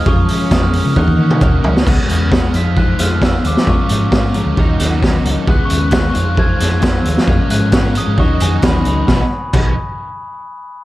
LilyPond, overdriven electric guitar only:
\new Staff \with { instrumentName = "Overdriven electric guitar" } { \time 4/4 \key b \lydian \tempo 4 = 133 eis8 cis'8 gis8 cis'8 dis8 cis'8 ais8 cis'8 | <cis gis b>4 <cis gis b eis'>8 <f aes c' f'>8 <f aes c' f'>8 <aes c' f'>8 <f aes c' f'>4 | <eis ais cis' eis'>4 <eis ais cis' eis'>8 <ais cis' eis'>8 <dis ais dis' fis'>8 <ais dis' fis'>8 <dis ais dis' fis'>4 | <cis gis b>4 <cis gis b eis'>8 <f aes c' f'>8 <f aes c' f'>8 <aes c' f'>8 <f aes c' f'>4 |
<eis ais cis' eis'>4 <eis ais cis' eis'>8 <ais cis' eis'>8 <dis ais dis' fis'>8 <ais dis' fis'>8 <dis ais dis' fis'>4 | <b, fis b dis'>8 r8 <b, fis b dis'>8 r2 r8 | }